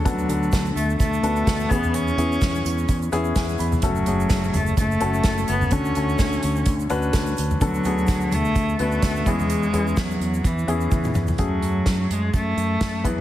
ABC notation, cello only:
X:1
M:4/4
L:1/8
Q:"Swing 16ths" 1/4=127
K:F#m
V:1 name="Cello"
F,3 A, A,3 B, | C4 z4 | F,3 A, A,3 B, | C4 z4 |
F,3 A,2 A,2 G,- | G,2 F,2 E,3 z | F,3 G, A,3 F, |]